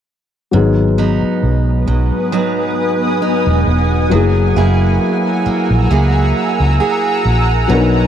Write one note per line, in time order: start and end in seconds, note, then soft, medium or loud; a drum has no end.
0.51 1.18 G#1 loud
0.51 4.11 G#2 medium
0.51 4.07 F#3 medium
0.51 4.07 B3 medium
0.51 4.08 D#4 medium
0.51 4.08 B4 medium
0.51 8.07 F#5 medium
0.51 7.66 G#5 medium
0.51 4.08 D#6 medium
0.57 4.09 G#4 medium
0.98 1.87 F#3 medium
0.98 2.32 B3 medium
0.98 2.32 D#4 medium
1.23 muted fingered electric bass stroke soft
1.43 1.84 B1 loud
1.88 2.10 B1 medium
1.88 2.32 F#3 medium
2.32 4.11 F#3 medium
2.32 4.21 B3 medium
2.32 3.21 D#4 medium
3.22 4.21 D#4 medium
3.47 3.65 E1 medium
3.67 4.08 E1 medium
4.10 4.53 F#1 loud
4.10 7.65 F#3 medium
4.10 7.70 F#3 medium
4.10 7.66 A#3 medium
4.10 7.67 E4 medium
4.10 8.07 A#5 medium
4.10 7.66 E6 medium
4.15 7.67 G#4 medium
4.56 4.97 F#1 medium
4.56 5.45 A#3 medium
4.56 5.90 E4 medium
4.56 5.91 G#4 medium
5.46 5.90 A#3 medium
5.46 muted fingered electric bass stroke soft
5.70 5.89 A#1 medium
5.91 6.32 C#2 medium
5.91 8.07 A#3 medium
5.91 7.80 E4 medium
5.91 6.79 G#4 medium
6.60 6.79 C#2 medium
6.80 7.79 G#4 medium
7.25 7.66 A#1 medium
7.68 8.07 B1 loud
7.68 8.07 B2 medium
7.68 8.07 F#3 medium
7.68 8.07 B3 medium
7.68 7.77 D4 medium
7.68 8.07 D#6 medium
7.73 8.07 A#4 medium
7.78 8.07 D#4 medium